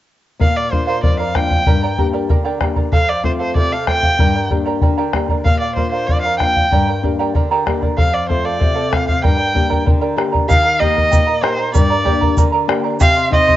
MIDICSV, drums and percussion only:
0, 0, Header, 1, 3, 480
1, 0, Start_track
1, 0, Key_signature, -2, "minor"
1, 0, Tempo, 630252
1, 306, Time_signature, 2, 2, 24, 8
1, 10331, End_track
2, 0, Start_track
2, 0, Title_t, "Bombo"
2, 311, Note_on_c, 9, 43, 69
2, 387, Note_off_c, 9, 43, 0
2, 551, Note_on_c, 9, 43, 54
2, 627, Note_off_c, 9, 43, 0
2, 787, Note_on_c, 9, 43, 67
2, 864, Note_off_c, 9, 43, 0
2, 1029, Note_on_c, 9, 37, 51
2, 1029, Note_on_c, 9, 43, 52
2, 1105, Note_off_c, 9, 37, 0
2, 1105, Note_off_c, 9, 43, 0
2, 1148, Note_on_c, 9, 43, 56
2, 1224, Note_off_c, 9, 43, 0
2, 1269, Note_on_c, 9, 43, 76
2, 1345, Note_off_c, 9, 43, 0
2, 1510, Note_on_c, 9, 43, 54
2, 1586, Note_off_c, 9, 43, 0
2, 1750, Note_on_c, 9, 43, 68
2, 1826, Note_off_c, 9, 43, 0
2, 1986, Note_on_c, 9, 37, 47
2, 1986, Note_on_c, 9, 43, 51
2, 2062, Note_off_c, 9, 37, 0
2, 2062, Note_off_c, 9, 43, 0
2, 2104, Note_on_c, 9, 43, 50
2, 2180, Note_off_c, 9, 43, 0
2, 2227, Note_on_c, 9, 43, 67
2, 2303, Note_off_c, 9, 43, 0
2, 2466, Note_on_c, 9, 43, 52
2, 2543, Note_off_c, 9, 43, 0
2, 2706, Note_on_c, 9, 43, 61
2, 2782, Note_off_c, 9, 43, 0
2, 2950, Note_on_c, 9, 37, 48
2, 2950, Note_on_c, 9, 43, 48
2, 3026, Note_off_c, 9, 37, 0
2, 3026, Note_off_c, 9, 43, 0
2, 3069, Note_on_c, 9, 43, 52
2, 3145, Note_off_c, 9, 43, 0
2, 3192, Note_on_c, 9, 43, 69
2, 3268, Note_off_c, 9, 43, 0
2, 3432, Note_on_c, 9, 43, 51
2, 3508, Note_off_c, 9, 43, 0
2, 3667, Note_on_c, 9, 43, 66
2, 3743, Note_off_c, 9, 43, 0
2, 3910, Note_on_c, 9, 37, 45
2, 3910, Note_on_c, 9, 43, 44
2, 3986, Note_off_c, 9, 37, 0
2, 3986, Note_off_c, 9, 43, 0
2, 4028, Note_on_c, 9, 43, 50
2, 4104, Note_off_c, 9, 43, 0
2, 4155, Note_on_c, 9, 43, 66
2, 4231, Note_off_c, 9, 43, 0
2, 4391, Note_on_c, 9, 43, 48
2, 4468, Note_off_c, 9, 43, 0
2, 4637, Note_on_c, 9, 43, 59
2, 4713, Note_off_c, 9, 43, 0
2, 4875, Note_on_c, 9, 37, 43
2, 4875, Note_on_c, 9, 43, 46
2, 4952, Note_off_c, 9, 37, 0
2, 4952, Note_off_c, 9, 43, 0
2, 4998, Note_on_c, 9, 43, 49
2, 5074, Note_off_c, 9, 43, 0
2, 5118, Note_on_c, 9, 43, 60
2, 5194, Note_off_c, 9, 43, 0
2, 5358, Note_on_c, 9, 43, 51
2, 5435, Note_off_c, 9, 43, 0
2, 5598, Note_on_c, 9, 43, 59
2, 5674, Note_off_c, 9, 43, 0
2, 5840, Note_on_c, 9, 37, 44
2, 5840, Note_on_c, 9, 43, 43
2, 5916, Note_off_c, 9, 37, 0
2, 5916, Note_off_c, 9, 43, 0
2, 5960, Note_on_c, 9, 43, 47
2, 6036, Note_off_c, 9, 43, 0
2, 6080, Note_on_c, 9, 43, 65
2, 6156, Note_off_c, 9, 43, 0
2, 6323, Note_on_c, 9, 43, 47
2, 6399, Note_off_c, 9, 43, 0
2, 6558, Note_on_c, 9, 43, 63
2, 6634, Note_off_c, 9, 43, 0
2, 6799, Note_on_c, 9, 37, 49
2, 6799, Note_on_c, 9, 43, 51
2, 6875, Note_off_c, 9, 37, 0
2, 6875, Note_off_c, 9, 43, 0
2, 6918, Note_on_c, 9, 43, 55
2, 6994, Note_off_c, 9, 43, 0
2, 7040, Note_on_c, 9, 43, 67
2, 7116, Note_off_c, 9, 43, 0
2, 7280, Note_on_c, 9, 43, 57
2, 7356, Note_off_c, 9, 43, 0
2, 7402, Note_on_c, 9, 43, 51
2, 7478, Note_off_c, 9, 43, 0
2, 7519, Note_on_c, 9, 43, 70
2, 7595, Note_off_c, 9, 43, 0
2, 7756, Note_on_c, 9, 37, 50
2, 7832, Note_off_c, 9, 37, 0
2, 7879, Note_on_c, 9, 43, 51
2, 7955, Note_off_c, 9, 43, 0
2, 8001, Note_on_c, 9, 43, 71
2, 8078, Note_off_c, 9, 43, 0
2, 8239, Note_on_c, 9, 43, 49
2, 8315, Note_off_c, 9, 43, 0
2, 8360, Note_on_c, 9, 43, 50
2, 8436, Note_off_c, 9, 43, 0
2, 8476, Note_on_c, 9, 43, 71
2, 8552, Note_off_c, 9, 43, 0
2, 8711, Note_on_c, 9, 37, 55
2, 8787, Note_off_c, 9, 37, 0
2, 8951, Note_on_c, 9, 43, 72
2, 9027, Note_off_c, 9, 43, 0
2, 9187, Note_on_c, 9, 43, 50
2, 9263, Note_off_c, 9, 43, 0
2, 9308, Note_on_c, 9, 43, 59
2, 9384, Note_off_c, 9, 43, 0
2, 9422, Note_on_c, 9, 43, 71
2, 9498, Note_off_c, 9, 43, 0
2, 9665, Note_on_c, 9, 37, 59
2, 9741, Note_off_c, 9, 37, 0
2, 9907, Note_on_c, 9, 43, 77
2, 9983, Note_off_c, 9, 43, 0
2, 10148, Note_on_c, 9, 43, 56
2, 10224, Note_off_c, 9, 43, 0
2, 10272, Note_on_c, 9, 43, 58
2, 10331, Note_off_c, 9, 43, 0
2, 10331, End_track
3, 0, Start_track
3, 0, Title_t, "Drums"
3, 7994, Note_on_c, 9, 82, 84
3, 8070, Note_off_c, 9, 82, 0
3, 8472, Note_on_c, 9, 82, 86
3, 8548, Note_off_c, 9, 82, 0
3, 8944, Note_on_c, 9, 82, 85
3, 9020, Note_off_c, 9, 82, 0
3, 9427, Note_on_c, 9, 82, 88
3, 9503, Note_off_c, 9, 82, 0
3, 9901, Note_on_c, 9, 82, 83
3, 9977, Note_off_c, 9, 82, 0
3, 10331, End_track
0, 0, End_of_file